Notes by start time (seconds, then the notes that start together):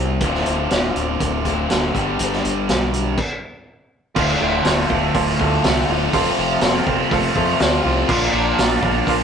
Already playing: C2 C3 G3 C4 E4 G4 C5
0.20 D1 D2 A2 D3 A3, kick, closed hi-hat
0.25 C4 F4
0.34 snare
0.46 D1, closed hi-hat
0.70 D1, snare, closed hi-hat
0.95 D1, closed hi-hat
1.20 D1, kick, closed hi-hat
1.45 D2 A2 D3 A3 C4 F4, kick, closed hi-hat
1.70 D1 D2 A2 D3 A3 C4 F4, snare, closed hi-hat
1.95 G1 G2 D3 G3 B3 D4 G4, kick, closed hi-hat
2.19 G1, closed hi-hat
2.33 snare
2.45 G1, closed hi-hat
2.69 B1, snare, closed hi-hat
2.94 closed hi-hat
3.18 kick, crash
4.15 D1 D2 A2 D3 A3 F4 A4 D5 F5, kick, crash
4.41 D1 A2 F4 A4 D5 F5
4.65 D1 A3 F4 A4 D5 F5, snare, open hi-hat
4.90 D1 A2 F4 A4 D5 F5, kick
5.14 D1 D3 F4 A4 D5 F5, kick, open hi-hat
5.39 D2 A2 D3 A3 F4 A4 D5 F5, kick
5.64 C2 D2 A2 D3 A3 F4 A4 D5 F5, snare, open hi-hat
5.89 D1 F4 A4 D5 F5
6.13 F1 F2 C3 F3 A3 C4 F4 A4 C5 F5, kick, open hi-hat
6.38 F1 F3 F4 A4 C5 F5
6.61 F1 C4 F4 A4 C5 F5, snare, open hi-hat
6.87 F1 F3 F4 A4 C5 F5, kick
7.11 F1 A3 F4 A4 C5 F5, kick, open hi-hat
7.36 F2 C3 F3 A3 C4 F4 A4 C5 F5, kick
7.40 F2
7.60 D2 F2 C3 F3 A3 C4 F4 A4 C5 F5, snare, open hi-hat
7.64 C4 F4
7.84 C2 F4 A4 C5 F5
8.09 A#1 A#2 F3 A#3 D4 F4 A#4 D5 F5, kick, crash
8.33 A#1 A#3 F4 A#4 D5 F5
8.58 A#1 F4 A#4 D5 F5, snare, open hi-hat
8.82 A#1 A#3 F4 A#4 D5 F5, kick
9.06 A#1 D4 F4 A#4 D5 F5, kick, open hi-hat